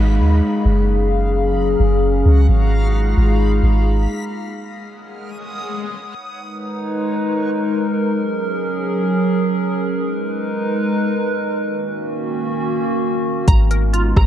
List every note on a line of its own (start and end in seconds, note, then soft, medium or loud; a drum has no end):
0.00 0.21 G#1 loud
0.00 0.63 G#3 medium
0.00 0.63 A#3 medium
0.00 0.64 D#4 medium
0.00 0.64 G#4 medium
0.00 2.45 F5 medium
0.00 4.28 F5 medium
0.00 0.64 B5 medium
0.00 downlifter medium
0.20 0.41 D#2 medium
0.65 1.76 F#1 loud
0.65 2.47 F#3 medium
0.65 2.47 C#4 medium
0.65 2.47 F#4 medium
0.65 2.47 G#4 medium
0.65 2.47 A#5 medium
1.80 2.24 F#1 loud
2.26 2.48 C#2 loud
2.48 3.15 G#1 loud
2.48 4.30 G#3 medium
2.48 4.30 A#3 medium
2.48 4.30 D#4 medium
2.48 4.30 F4 medium
2.48 4.30 G#4 medium
2.48 4.30 B5 medium
3.17 3.61 G#1 loud
3.63 4.07 G#1 loud
4.31 6.13 C#5 medium
4.31 6.13 F#5 medium
4.31 6.13 D#6 medium
4.31 swell medium
6.15 7.96 G#3 medium
6.15 7.96 D#4 medium
6.15 11.61 A#4 medium
6.15 7.96 B4 medium
7.98 9.79 F#3 medium
7.98 9.79 C#4 medium
7.98 9.79 G#4 medium
9.81 11.63 G#3 medium
9.81 11.63 D#4 medium
9.81 11.63 B4 loud
11.64 13.46 D#3 medium
11.64 13.46 A#3 medium
11.64 13.46 C#4 medium
11.64 13.46 F#4 medium
13.48 14.14 G#1 loud
13.48 14.27 G#3 medium
13.48 14.27 B3 medium
13.48 14.27 D#4 medium
13.48 14.27 B4 medium
13.48 14.27 A#5 medium
13.48 14.16 A#5 loud
13.48 14.27 F6 medium
13.48 kick loud
13.48 closed hi-hat medium
13.71 14.27 A#4 medium
13.71 closed hi-hat medium
13.93 14.27 F4 medium
13.93 closed hi-hat medium
14.16 14.27 G#1 loud
14.16 14.27 A#5 loud
14.16 kick loud
14.16 cross-stick loud